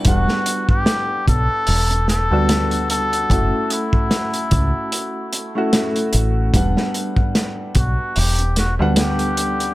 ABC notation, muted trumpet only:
X:1
M:4/4
L:1/16
Q:"Swing 16ths" 1/4=74
K:Edor
V:1 name="Muted trumpet"
F3 G3 A4 A4 A2- | A2 E12 z2 | z6 F2 G2 F2 G4 |]